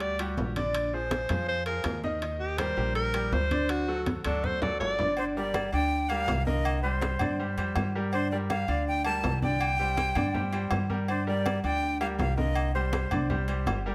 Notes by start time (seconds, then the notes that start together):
Already playing: D2 G3 F#4 G4
0.00 D5, high conga, high timbale
0.19 G3 F#4 G4, high conga, high timbale
0.37 A#1, high conga, low timbale
0.56 D3 D4 D5, high conga, high timbale
0.75 high conga, high timbale
0.93 F3 F4 G#4 C5, high conga
1.11 high conga, high timbale, low timbale
1.29 F2 F3 F4 G#4, high conga, low conga, high timbale
1.48 C5, high conga
1.66 F3 F4 G#4 A#4, high conga, high timbale
1.84 D#2, high conga, high timbale, low timbale
2.04 D#3 D#4 D#5, high conga
2.22 D#3 D#4 D#5, high conga, high timbale
2.40 G4, high conga
2.58 G3 G4 A#4 C5, high conga, high timbale, low timbale
2.77 A#1 G3 G4 A#4, high conga
2.95 A#4, high conga, high timbale
3.14 G3 G4 A#4, high conga, high timbale
3.32 D2 C5, high conga, low timbale
3.51 D3 D4 D5, high conga, high timbale
3.69 F#4, high conga, high timbale
3.88 F#3 F#4 A4, high conga
4.06 high conga, high timbale, low timbale
4.24 D2 F#3 D4 F#4 A4, high conga, high timbale
4.44 C5, low conga
4.61 F#3 F#4 A4 D5, low conga, high timbale
4.80 G1 D5, low timbale
4.99 D3 D4 D5, low conga, low timbale
5.17 D3 D4 C5 D5, high conga, low agogo
5.36 G3 G4 A#4 D5, high conga
5.54 high conga, low timbale, low agogo
5.73 D2 D3 D4 D5 G5, high conga, low agogo
5.91 high conga
6.09 G3 G4 A#4 F5, high conga, low agogo
6.28 C2, high conga, low timbale, low agogo
6.46 D3 A#3 A#4 D#5, high conga
6.65 high conga, low agogo
6.83 G3 G4 C5, high conga
7.01 high conga, low timbale, low agogo
7.19 G2 D3 D4 D5, high conga, low conga, low agogo
7.39 G3 G4 C5, high conga
7.57 F2 G3 G4 C5, high conga, low agogo
7.76 G2, high conga, low timbale, low agogo
7.95 G3 G4 A#4
8.13 D3 D4 C5 D5, high conga, low agogo
8.31 G3 G4 A#4 D5, high conga
8.50 F5, high conga, low timbale, low agogo
8.68 D2 D3 D4 D5, high conga, low agogo
8.87 G5, high conga
9.04 G3 G4 A#4 A5, high conga, low agogo
9.23 C2, high conga, low timbale, low agogo
9.42 D3 D4 D5 G5, high conga
9.61 low agogo
9.79 G3 G4 C5, high conga
9.97 high conga, low timbale, low agogo
10.15 G2 D3 D4 D5, high conga, low conga, low agogo
10.34 G3 G4 C5, high conga, low conga
10.53 G3 G4 C5, high conga, low agogo
10.71 G2, high conga, low timbale, low agogo
10.90 G3 G4 A#4, high conga
11.08 D3 D4 C5 D5, high conga, low agogo
11.27 G3 G4 A#4 D5, high conga
11.46 high conga, low timbale, low agogo
11.63 D2 D3 D4 D5 G5, high conga, low agogo
11.83 high conga
12.00 G3 G4 A#4 F5, high conga, low agogo
12.19 C2 F5, high conga, low timbale, low agogo
12.37 D3 A#3 A#4 D#5, high conga
12.55 high conga, low agogo
12.75 G3 G4 C5, high conga
12.93 high conga, low timbale, low agogo
13.11 C2 D3 D4 D5, high conga, low conga, low agogo
13.30 G3 G4 C5, high conga, low conga
13.48 G3 G4 C5, high conga, low agogo
13.66 G1, high conga, low timbale, low agogo
13.86 G3 G4 A#4